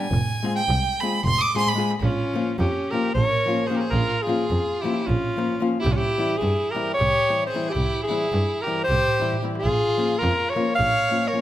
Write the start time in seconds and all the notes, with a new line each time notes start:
0.00 G#5
0.11 F1, darbuka dum
0.30 darbuka tek
0.43 G#3 C4 F4 G#4, darbuka tek
0.56 G5
0.68 C2, darbuka tek
0.87 darbuka tek
1.00 G#3 C4 F4 G#4 B5, darbuka tek
1.15 darbuka tek
1.25 F1 C6, darbuka dum
1.38 D6 D#6, darbuka dum
1.54 G#3 C4 F4 G#4 C6, darbuka dum
1.67 B5, darbuka dum
1.75 G#3 C4 F4 G#4
1.79 darbuka tek
1.91 darbuka tek
2.01 A#1 C#4 F4, darbuka dum
2.34 F3 A#3 C#4 F4, darbuka tek
2.58 F2 C#4 G4, darbuka tek
2.77 darbuka tek
2.91 F3 A#3 C#4 F4 G4 A#4
3.05 darbuka tek
3.14 A#1 A#4 C#5, darbuka dum
3.46 F3 A#3 C#4 F4, darbuka tek
3.67 F3 A#3 G#4 C5, darbuka tek
3.71 C#4 F4 G4
3.76 G#4 A#4 C5
3.81 darbuka tek
3.89 A#1 F4 A#4
3.93 darbuka dum
4.22 F4 G#4
4.27 F3 A#3 C#4 F4, darbuka tek
4.50 F2, darbuka tek
4.69 darbuka tek
4.80 F3 E4 G4, darbuka tek
4.85 A#3 C#4 F4
4.97 darbuka tek
5.06 A#1 C#4 F4, darbuka dum
5.24 darbuka tek
5.37 F3 A#3 C#4 F4, darbuka tek
5.60 F3 A#3 C#4 F4, darbuka tek
5.74 darbuka tek
5.80 E4 G4
5.85 C2, darbuka dum
5.91 C#4 F4
5.96 E4 G4
6.18 E3 G3 C4 E4, darbuka tek
6.32 darbuka tek
6.37 E4 G#4
6.41 G2, darbuka tek
6.60 darbuka tek
6.71 E3 G4 A#4
6.75 G3 C4 E4, darbuka tek
6.90 C#5, darbuka tek
6.96 C2 G4
7.01 darbuka dum
7.15 darbuka tek
7.29 E3 G3 C4 E4, darbuka tek
7.46 G#4 C5
7.54 E3 G3 C4 E4, darbuka tek
7.65 darbuka tek
7.69 E4 G4
7.76 C2, darbuka dum
7.94 darbuka tek
8.03 E4 G#4
8.09 E3 G3 C4 E4, darbuka tek
8.32 G2, darbuka tek
8.50 darbuka tek
8.62 G4 A#4
8.66 E3 G3 C4 E4, darbuka tek
8.79 darbuka tek
8.84 G4 C5
8.89 C2, darbuka dum
9.08 darbuka dum
9.19 E3 G3 C4 E4, darbuka dum
9.33 darbuka dum
9.42 E3 G3 C4 E4, darbuka tek
9.55 G#4, darbuka tek
9.61 A#1 F4
9.67 darbuka dum
9.97 F3 A#3 C#4 F4, darbuka tek
10.12 darbuka tek
10.18 F4 A#4
10.22 F2, darbuka tek
10.41 darbuka tek
10.50 A#4 C#5
10.55 F3 A#3 C#4 F4, darbuka tek
10.69 darbuka tek
10.75 C#5 F5
10.80 A#1, darbuka dum
10.95 darbuka tek
11.09 F3 A#3 C#4 F4, darbuka tek
11.27 A#4 C#5
11.33 F3 A#3 C#4 F4, darbuka tek